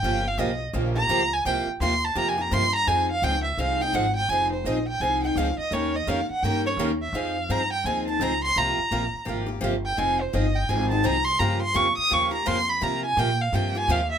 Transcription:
X:1
M:4/4
L:1/16
Q:"Swing" 1/4=169
K:Fm
V:1 name="Violin"
g2 f2 e2 z4 b4 a2 | g2 z2 c'2 =a2 (3b2 _a2 b2 c'2 b2 | a2 f2 g2 =e2 f2 g2 _g2 =g2 | a2 c2 e2 g2 a2 g2 f2 e2 |
d2 e2 f2 _g2 =g2 d2 z2 =e2 | f4 b2 g2 a2 =a2 b2 c'2 | b8 z6 g2 | a2 c2 e2 g2 a2 =a2 b2 c'2 |
b2 c'2 d'2 e'2 d'2 b2 c'2 =b2 | b2 a2 g2 f2 g2 a2 f2 =e2 |]
V:2 name="Steel-string acoustic guitar"
[D,F,B,FG]2 z2 [D,F,B,FG] z3 [D,F,B,FG]2 [B,FG]2 [D,F,B,FG] z3 | [C,F,B,FG]2 z2 [C,F,B,FG] z3 [C,F,B,FG]2 [B,FG]2 [C,F,B,FG] z3 | [F,CEA]2 z2 [F,CEA] z3 [F,CEA]2 [CEA]2 [F,CEA] z3 | [F,CEA]2 z2 [F,CEA] z3 [F,CEA]2 [CEA]2 [F,CEA] z3 |
[E,B,DGB]2 z2 [E,B,DGB] z3 [E,B,DGB]2 [DGB]2 [E,B,DGB] z3 | [F,CEA]2 z2 [F,CEA] z3 [F,CEA]2 [CEA]2 [F,CEA] z3 | [C,F,B,FG]2 z2 [C,F,B,FG] z3 [C,F,B,FG]2 [B,FG]2 [C,F,B,FG] z3 | [F,CEA]2 z2 [F,CEA] z3 [F,CEA]2 [CEA]2 [F,CEA] z3 |
[D,F,B,FG]2 z2 [D,F,B,FG] z3 [D,F,B,FG]2 [B,FG]2 [D,F,B,FG] z3 | [C,F,B,FG]2 z2 [C,F,B,FG] z3 [C,F,B,FG]2 [B,FG]2 [C,F,B,FG] z3 |]
V:3 name="Steel-string acoustic guitar"
[D,F,B,FG]2 z2 [D,F,B,FG] z3 [D,F,B,FG]2 z2 [D,F,B,FG] z3 | [C,F,B,FG]2 z2 [C,F,B,FG] z3 [C,F,B,FG]2 z2 [C,F,B,FG] z3 | [F,CEA]2 z2 [F,CEA] z3 [F,CEA]2 z2 [F,CEA] z3 | [F,CEA]2 z2 [F,CEA] z3 [F,CEA]2 z2 [F,CEA] z3 |
[E,B,DGB]2 z2 [E,B,DGB] z3 [E,B,DGB]2 z2 [E,B,DGB] z3 | [F,CEA]2 z2 [F,CEA] z3 [F,CEA]2 z2 [F,CEA] z3 | [C,F,B,FG]2 z2 [C,F,B,FG] z3 [C,F,B,FG]2 z2 [C,F,B,FG] z3 | [F,CEA]2 z2 [F,CEA] z3 [F,CEA]2 z2 [F,CEA] z3 |
[D,F,B,FG]2 z2 [D,F,B,FG] z3 [D,F,B,FG]2 z2 [D,F,B,FG] z3 | [C,F,B,FG]2 z2 [C,F,B,FG] z3 [C,F,B,FG]2 z2 [C,F,B,FG] z3 |]
V:4 name="Upright bass" clef=bass
G,,,4 =B,,,4 _B,,,4 D,,4 | C,,2 z2 E,,4 F,,4 G,,4 | F,,4 D,,4 C,,4 A,,,4 | F,,,4 B,,,4 C,,4 D,,2 z2 |
E,,4 F,,2 z2 G,,4 E,,4 | F,,4 G,,4 E,,4 D,,4 | C,,2 z2 B,,,2 z2 A,,,4 G,,,4 | F,,,4 G,,,4 A,,,4 C,,4 |
G,,4 F,,2 z2 E,,4 F,,4 | C,4 B,,4 G,,4 E,,4 |]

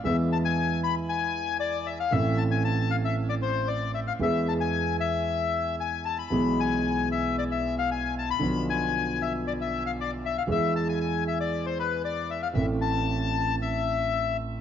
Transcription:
X:1
M:4/4
L:1/16
Q:1/4=116
K:Ephr
V:1 name="Bandoneon"
e2 a ^g3 b2 g4 d2 e f | e2 a ^g a2 f e2 d c2 d2 e f | e2 a ^g3 e6 g2 a b- | b2 ^g4 e2 d e2 f g2 a b- |
b2 ^g4 e2 d e2 f d2 e f | e2 a ^g g2 e d2 c B2 d2 e f | e2 a6 e6 z2 |]
V:2 name="Grand piano" clef=bass
[E,,E,^G,B,^G]16 | [A,,,A,,E,A,CA]16 | [E,,E,^G,B,^G]16 | [B,,,B,,E,^G,B,^G]16 |
[B,,,B,,D,F,B,F]16 | [E,,E,^G,B,^G]16 | [A,,,A,,E,A,CA]16 |]
V:3 name="Upright bass" clef=bass
E,,16 | A,,,16 | E,,16 | B,,,16 |
B,,,16 | E,,16 | A,,,16 |]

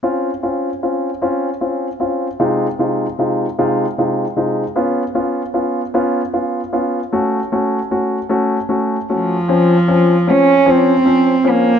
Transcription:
X:1
M:6/8
L:1/8
Q:3/8=51
K:Db
V:1 name="Grand piano"
[CDF] [CDF] [CDF] [CDF] [CDF] [CDF] | [C,A,EF] [C,A,EF] [C,A,EF] [C,A,EF] [C,A,EF] [C,A,EF] | [_CDF] [CDF] [CDF] [CDF] [CDF] [CDF] | [=A,DG] [A,DG] [A,DG] [A,DG] [A,DG] [A,DG] |
[F,CD] [F,CD] [F,CD] [F,CD] [F,CD] [F,CD] |]
V:2 name="Cello"
z6 | z6 | z6 | z4 z F,- |
F,2 D C2 B, |]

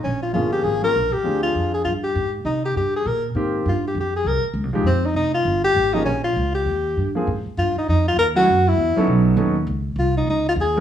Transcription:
X:1
M:4/4
L:1/8
Q:"Swing" 1/4=200
K:Fm
V:1 name="Tenor saxophone"
D F F G A B2 G- | G F2 A F G2 z | E G G A B z3 | F G G A B z3 |
C E E F2 G2 E | D F2 G4 z | [K:Dblyd] z2 F E E F B _G- | _G _F3 z4 |
z2 F E E F A z |]
V:2 name="Grand piano"
z2 [F,B,DA]3 [F,B,DF] z2 | [F,C=DA]4 z4 | z6 [E,B,CG]2 | z6 z [F,A,EG] |
z6 z [F,B,DA] | z6 z [F,B,CA] | [K:Dblyd] z6 z [_G,=A,D_F=A] | z3 [_G,_CDE=A]3 [^F,=B,^C^DA] z |
z6 z [_G,B,C] |]
V:3 name="Upright bass" clef=bass
B,,,2 G,,,2 A,,,2 B,,, z | =D,,2 F,,2 G,,2 A,,2 | C,2 G,,2 B,,2 A,,2 | G,,2 F,,2 C,, z (3D,, C,, B,,, |
F,,2 F,,,2 G,,,2 A,,,2 | B,,,2 D,,2 E,,2 G,,2 | [K:Dblyd] A,, z G,, z F,,2 E,,2 | _G,,2 _F,, z =B,,,2 ^D,,2 |
D,,2 C,,2 D,,2 E,,2 |]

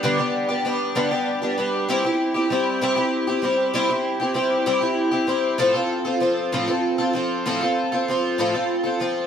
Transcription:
X:1
M:6/8
L:1/16
Q:3/8=65
K:C
V:1 name="Twelve-string acoustic guitar"
[G,,D,G,B,DG] [G,B,DG]2 [G,B,DG] [G,B,DG]2 [G,,D,G,B,DG] [G,B,DG]2 [G,B,DG] [G,B,DG]2 | [G,CEG] [CEG]2 [CEG] [G,CEG]2 [G,CEG] [CEG]2 [CEG] [G,CEG]2 | [G,CEG] [CEG]2 [CEG] [G,CEG]2 [G,CEG] [CEG]2 [CEG] [G,CEG]2 | [A,,F,CFA] [CFA]2 [CFA] [F,CFA]2 [A,,F,CFA] [CFA]2 [CFA] [F,CFA]2 |
[A,,F,CFA] [CFA]2 [CFA] [F,CFA]2 [A,,F,CFA] [CFA]2 [CFA] [F,CFA]2 |]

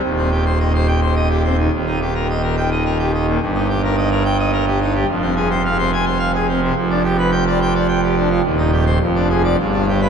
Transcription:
X:1
M:3/4
L:1/16
Q:1/4=107
K:Cm
V:1 name="Pipe organ"
E,, C G c e c g c e G C E, | E,, E G B e B g e B G E B,, | G,, E G B e B g e B G E G, | F,, C A c f c a c f A C C, |
F,, D G =B g d g d g G D F, | E,, E G c F,, D A d G,, D G =B |]
V:2 name="Pipe organ" clef=bass
E,,,12 | E,,,12 | G,,,12 | F,,,12 |
F,,,12 | E,,,4 F,,,4 G,,,4 |]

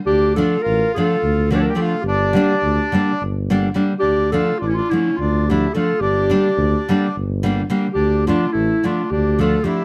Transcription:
X:1
M:7/8
L:1/16
Q:1/4=107
K:Dm
V:1 name="Clarinet"
G2 A2 B2 A4 B/2 ^c/2 B A2 | G8 z6 | G2 A2 F/2 E/2 F E2 F2 G2 A2 | G8 z6 |
G2 F2 E2 F2 G2 A2 G2 |]
V:2 name="Accordion"
D2 F2 F2 F4 G/2 A/2 G F2 | D8 z6 | D2 F2 D/2 ^C/2 D C2 D2 E2 F2 | D8 z6 |
D2 D2 A,2 D2 D2 F2 E2 |]
V:3 name="Nylon-string guitar" clef=bass
z2 [D,F,A,D]2 z2 [D,F,A,D]2 z2 [D,F,A,D]2 [D,F,A,D]2 | z2 [D,G,B,D]2 z2 [D,G,B,D]2 z2 [D,G,B,D]2 [D,G,B,D]2 | z2 [D,F,A,D]2 z2 [D,F,A,D]2 z2 [D,F,A,D]2 [D,F,A,D]2 | z2 [D,G,B,D]2 z2 [D,G,B,D]2 z2 [D,G,B,D]2 [D,G,B,D]2 |
z2 [D,F,A,D]2 z2 [D,F,A,D]2 z2 [D,F,A,D]2 [D,F,A,D]2 |]
V:4 name="Tuba" clef=bass
D,,4 A,,,2 z2 D,,6 | G,,,4 D,,2 z2 G,,,6 | D,,4 A,,,2 z2 D,,6 | G,,,4 D,,2 z2 G,,,6 |
D,,4 A,,,2 z2 D,,6 |]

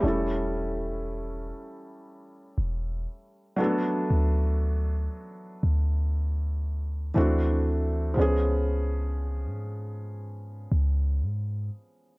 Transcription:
X:1
M:4/4
L:1/16
Q:"Swing 16ths" 1/4=59
K:Dlyd
V:1 name="Felt piano"
c z12 z3 | z16 | z16 |]
V:2 name="Felt piano"
[=G,A,CEA]12- [G,A,CEA]2 [F,A,B,DA]2- | [F,A,B,DA]12 [E,A,=CDF]4 | [^E,G,B,CG]16 |]
V:3 name="808-style bass" clef=bass
E,,,6 z4 E,,,2 z4 | D,,4 z2 D,,6 D,,4 | C,,4- C,, G,,4- G,, C,,2 G,,2 z2 |]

